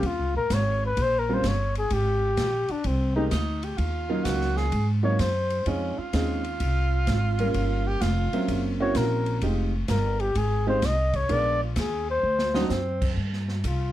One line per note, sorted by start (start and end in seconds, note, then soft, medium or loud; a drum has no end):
0.03 0.18 D#2 medium
0.03 0.36 F4 medium
0.03 kick soft
0.03 ride medium
0.18 0.34 C#2 medium
0.34 0.49 A#1 medium
0.34 0.55 A#4 medium
0.50 0.96 G#1 medium
0.50 0.83 C#5 loud
0.50 kick soft
0.50 snare medium
0.50 hi-hat pedal medium
0.50 ride medium
0.86 1.04 B4 medium
0.97 1.42 A#1 medium
0.97 kick soft
0.97 ride medium
1.02 1.21 C5 loud
1.19 1.36 A#4 medium
1.29 1.43 G3 medium
1.29 1.43 A#3 medium
1.29 1.43 C4 medium
1.29 1.43 C#4 medium
1.29 1.43 F4 medium
1.34 1.49 C5 medium
1.44 1.89 G1 medium
1.44 kick soft
1.44 snare medium
1.44 hi-hat pedal medium
1.44 ride medium
1.48 1.77 C#5 medium
1.75 1.95 G#4 medium
1.75 ride soft
1.90 2.36 G#1 medium
1.90 2.73 G4 medium
1.90 kick soft
1.90 ride medium
2.37 2.67 A#1 medium
2.37 kick soft
2.37 snare medium
2.37 hi-hat pedal soft
2.37 ride medium
2.68 2.88 D4 medium
2.68 muted upright bass stroke soft
2.68 ride soft
2.84 3.30 C2 medium
2.84 3.15 C4 medium
2.84 kick soft
2.84 ride medium
3.16 3.30 G#3 medium
3.16 3.30 A#3 medium
3.16 3.30 C4 medium
3.16 3.25 D#4 medium
3.16 3.30 D#4 medium
3.16 3.30 G4 medium
3.31 3.77 D2 medium
3.31 3.65 D#4 medium
3.31 kick soft
3.31 snare medium
3.31 hi-hat pedal medium
3.31 ride medium
3.63 3.79 G4 medium
3.63 ride soft
3.78 4.24 D#2 medium
3.78 4.26 F4 medium
3.78 kick soft
3.78 ride medium
4.09 4.69 F#3 medium
4.09 4.69 A#3 medium
4.09 4.69 C#4 medium
4.09 4.70 D#4 medium
4.09 4.69 F4 medium
4.25 4.71 C#2 medium
4.25 4.58 F#4 medium
4.25 kick soft
4.25 snare medium
4.25 hi-hat pedal medium
4.25 ride medium
4.41 snare soft
4.56 4.88 G#4 loud
4.56 snare soft
4.72 5.18 G#2 medium
4.72 kick soft
4.72 ride medium
5.03 5.17 F#3 medium
5.03 5.17 A#3 medium
5.03 5.17 C4 medium
5.03 5.17 D#4 medium
5.03 5.17 F4 medium
5.03 5.22 C#5 medium
5.19 5.65 F#2 medium
5.19 5.67 C5 medium
5.19 kick soft
5.19 snare medium
5.19 hi-hat pedal medium
5.19 ride medium
5.50 ride soft
5.66 5.95 F2 medium
5.66 5.95 G#3 medium
5.66 5.95 C4 medium
5.66 5.95 C#4 medium
5.66 6.00 C#4 medium
5.66 5.95 D#4 medium
5.66 5.95 F4 medium
5.66 kick soft
5.66 ride medium
5.98 7.89 F4 medium
5.98 muted upright bass stroke soft
6.13 6.59 D#2 medium
6.13 6.42 G#3 medium
6.13 6.42 C4 medium
6.13 6.42 C#4 medium
6.13 6.42 D#4 medium
6.13 6.42 G#4 medium
6.13 kick soft
6.13 snare medium
6.13 hi-hat pedal soft
6.13 ride medium
6.44 ride soft
6.60 7.06 C2 medium
6.60 kick soft
6.60 ride medium
7.07 7.53 G#1 medium
7.07 kick soft
7.07 snare medium
7.07 hi-hat pedal soft
7.07 ride medium
7.39 7.98 G3 medium
7.39 7.98 A#3 medium
7.39 7.98 C#4 medium
7.39 7.99 F4 medium
7.39 7.99 A#4 medium
7.39 ride medium
7.54 8.00 G1 medium
7.54 kick soft
7.54 ride medium
7.87 8.03 G4 loud
8.01 8.30 F1 medium
8.01 8.64 F4 medium
8.01 kick soft
8.01 snare medium
8.01 hi-hat pedal medium
8.01 ride medium
8.33 8.77 F#3 medium
8.33 8.76 A#3 medium
8.33 8.77 C4 medium
8.33 8.77 C#4 medium
8.33 8.77 E5 medium
8.33 muted upright bass stroke soft
8.33 ride soft
8.48 8.94 F#1 medium
8.48 kick soft
8.48 ride medium
8.80 9.39 A#3 medium
8.80 9.39 C4 medium
8.80 9.39 C#4 medium
8.80 9.39 E4 medium
8.80 9.39 F#4 medium
8.80 8.98 C#5 loud
8.95 9.40 A#1 medium
8.95 9.43 A#4 medium
8.95 kick soft
8.95 snare medium
8.95 hi-hat pedal medium
8.95 ride medium
9.26 ride soft
9.41 9.87 F1 medium
9.41 9.70 G#3 medium
9.41 9.71 C4 medium
9.41 9.71 D#4 medium
9.41 9.71 F4 medium
9.41 9.71 G4 medium
9.41 kick soft
9.41 ride medium
9.88 10.34 G1 medium
9.88 10.22 A#4 medium
9.88 kick soft
9.88 snare medium
9.88 hi-hat pedal medium
9.88 ride medium
10.20 10.39 G4 medium
10.20 ride soft
10.35 10.81 G#1 medium
10.35 10.68 G#4 medium
10.35 kick soft
10.35 ride medium
10.67 10.81 G#3 medium
10.67 10.81 C4 medium
10.67 10.81 D#4 medium
10.67 10.81 F4 medium
10.67 10.81 G4 medium
10.67 10.87 C5 medium
10.82 11.28 C2 medium
10.82 11.18 D#5 medium
10.82 kick soft
10.82 snare medium
10.82 hi-hat pedal medium
10.82 ride medium
11.13 11.34 C#5 loud
11.13 kick medium
11.13 ride soft
11.29 11.75 A#1 medium
11.29 11.57 G#3 medium
11.29 11.58 B3 medium
11.29 11.57 D4 medium
11.29 11.57 F4 medium
11.29 11.58 A#4 medium
11.29 11.62 D5 loud
11.29 kick soft
11.29 ride medium
11.64 11.80 F4 medium
11.76 12.22 D#2 medium
11.76 12.09 G#4 medium
11.76 kick soft
11.76 snare medium
11.76 hi-hat pedal medium
11.76 ride medium
12.11 12.67 C5 medium
12.23 12.69 D2 medium
12.39 snare medium
12.54 12.68 F#3 medium
12.54 12.69 C4 medium
12.54 12.69 D4 medium
12.54 12.72 D#4 medium
12.54 12.69 D#4 medium
12.54 12.69 F#4 medium
12.54 snare medium
12.70 13.15 F#2 medium
12.70 13.17 C4 medium
12.70 snare medium
12.70 hi-hat pedal medium
13.02 kick medium
13.02 crash medium
13.17 13.62 G2 medium
13.17 kick soft
13.33 snare soft
13.48 snare soft
13.64 13.92 C2 medium
13.64 13.92 F4 medium
13.64 kick soft
13.64 hi-hat pedal medium
13.64 ride medium